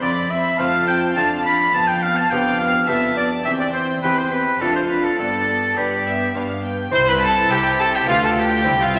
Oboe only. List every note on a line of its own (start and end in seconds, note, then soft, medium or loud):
0.02 0.32 D5 medium
0.30 0.60 E5 medium
0.58 0.87 F5 medium
0.87 1.00 G5 medium
1.16 1.29 A5 medium
1.45 1.72 B5 medium
1.73 1.88 A5 medium
1.86 2.04 G5 medium
2.03 2.18 F5 medium
2.16 2.31 A5 medium
2.30 2.58 G5 medium
2.59 2.89 F5 medium
2.88 3.16 E5 medium
3.17 3.30 D5 medium
3.45 3.51 E5 medium
3.60 3.67 D5 medium
3.73 3.87 C5 medium
4.02 4.19 B4 medium
4.17 4.33 C5 medium
4.32 4.62 B4 medium
4.61 4.75 A4 medium
4.75 4.82 C5 medium
4.89 5.05 B4 medium
5.04 5.18 A4 medium
5.18 5.78 A4 medium
5.76 6.35 G4 medium
6.94 7.10 C5 loud
7.08 7.25 B4 medium
7.24 7.52 A4 medium
7.51 7.82 G4 medium
7.80 7.97 A4 medium
7.95 8.08 G4 medium
8.08 8.23 F4 medium
8.24 8.41 A4 medium
8.39 8.83 G4 medium
8.82 8.99 F4 medium